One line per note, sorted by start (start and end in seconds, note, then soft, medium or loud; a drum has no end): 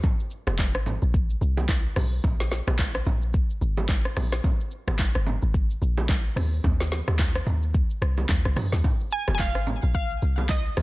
0.03 kick loud
0.03 low conga medium
0.03 shaker medium
0.20 shaker soft
0.31 shaker medium
0.47 0.76 F1 loud
0.47 cross-stick medium
0.47 low bongo medium
0.47 shaker soft
0.59 kick loud
0.59 clap loud
0.59 high bongo medium
0.59 shaker medium
0.75 0.98 G#1 loud
0.75 cross-stick loud
0.86 low conga medium
0.86 shaker medium
1.02 1.36 A#1 loud
1.02 shaker medium
1.14 kick loud
1.14 shaker medium
1.30 shaker medium
1.41 1.89 C2 medium
1.41 shaker loud
1.57 high bongo medium
1.57 low bongo medium
1.57 shaker soft
1.69 kick loud
1.69 clap loud
1.69 high bongo medium
1.69 shaker medium
1.84 shaker medium
1.96 2.20 B1 loud
1.96 cross-stick loud
1.96 open hi-hat medium
1.96 low bongo medium
1.96 low conga medium
1.96 shaker loud
2.12 shaker medium
2.24 2.61 A#1 loud
2.24 kick loud
2.24 low conga medium
2.24 shaker medium
2.40 snare medium
2.40 shaker soft
2.51 snare medium
2.51 shaker medium
2.67 3.01 A#1 loud
2.67 cross-stick medium
2.67 low bongo medium
2.67 shaker soft
2.79 kick loud
2.79 clap loud
2.79 high bongo medium
2.79 shaker medium
2.95 cross-stick loud
3.06 3.44 A#1 loud
3.06 low conga medium
3.06 shaker medium
3.22 shaker medium
3.34 kick loud
3.34 shaker medium
3.50 shaker medium
3.61 4.09 G#1 medium
3.61 shaker loud
3.77 high bongo medium
3.77 low bongo medium
3.77 shaker soft
3.88 kick loud
3.88 clap loud
3.88 high bongo medium
3.88 shaker medium
4.05 cross-stick medium
4.05 shaker medium
4.17 4.40 A#1 medium
4.17 cross-stick loud
4.17 open hi-hat medium
4.17 low bongo medium
4.17 low conga medium
4.17 shaker loud
4.32 cross-stick loud
4.32 snare medium
4.32 shaker medium
4.44 kick loud
4.44 low conga medium
4.44 shaker medium
4.60 shaker soft
4.71 shaker medium
4.88 5.11 G#1 loud
4.88 cross-stick medium
4.88 low bongo medium
4.88 shaker soft
4.99 kick loud
4.99 clap loud
4.99 high bongo medium
4.99 shaker medium
5.15 5.39 G1 medium
5.15 cross-stick loud
5.26 low conga medium
5.26 shaker medium
5.42 5.76 G#1 loud
5.42 shaker medium
5.54 kick loud
5.54 shaker medium
5.70 shaker medium
5.82 6.29 A#1 medium
5.82 shaker medium
5.98 high bongo medium
5.98 low bongo medium
5.98 shaker soft
6.09 kick loud
6.09 clap loud
6.09 high bongo medium
6.09 shaker medium
6.25 shaker medium
6.36 6.60 D#2 loud
6.36 cross-stick loud
6.36 open hi-hat medium
6.36 low bongo medium
6.36 low conga medium
6.36 shaker loud
6.53 shaker medium
6.64 7.02 D#2 loud
6.64 kick loud
6.64 low conga medium
6.64 shaker medium
6.80 snare medium
6.80 shaker medium
6.91 snare medium
6.91 low bongo medium
6.91 shaker medium
7.08 7.41 D#2 medium
7.08 cross-stick medium
7.08 low bongo medium
7.08 shaker soft
7.19 kick loud
7.19 clap loud
7.19 high bongo medium
7.19 shaker medium
7.35 cross-stick loud
7.35 shaker medium
7.47 7.84 D#2 loud
7.47 low conga medium
7.47 shaker medium
7.62 shaker medium
7.74 kick loud
7.74 shaker medium
7.90 shaker medium
8.02 8.25 C2 medium
8.02 cross-stick medium
8.02 shaker loud
8.17 high bongo medium
8.17 low bongo medium
8.17 shaker soft
8.29 8.43 D#2 medium
8.29 kick loud
8.29 clap loud
8.29 high bongo medium
8.29 shaker medium
8.45 8.55 C2 loud
8.45 cross-stick medium
8.45 shaker medium
8.56 cross-stick loud
8.56 mid tom loud
8.56 open hi-hat medium
8.56 low bongo medium
8.56 low conga medium
8.56 shaker loud
8.72 8.83 D#2 medium
8.72 snare medium
8.72 high bongo medium
8.72 shaker medium
8.84 kick loud
8.84 low conga medium
8.84 shaker medium
9.00 shaker medium
9.11 9.33 G#5 loud
9.11 shaker medium
9.28 9.57 F1 loud
9.28 cross-stick medium
9.28 low bongo medium
9.28 shaker soft
9.35 9.40 G#5 medium
9.39 9.94 F5 loud
9.39 kick loud
9.39 clap loud
9.39 high bongo medium
9.39 shaker medium
9.55 9.79 G#1 loud
9.55 cross-stick loud
9.67 low conga medium
9.67 shaker medium
9.82 10.17 A#1 medium
9.82 shaker medium
9.94 10.46 F5 loud
9.94 kick loud
9.94 shaker medium
10.10 shaker medium
10.22 10.69 C2 medium
10.22 shaker loud
10.38 high bongo medium
10.38 low bongo medium
10.38 shaker soft
10.49 10.82 D#5 medium
10.49 kick loud
10.49 clap loud
10.49 high bongo medium
10.49 shaker medium
10.65 shaker medium
10.77 10.82 B1 medium
10.77 cross-stick loud
10.77 open hi-hat medium
10.77 low bongo medium
10.77 low conga medium
10.77 shaker loud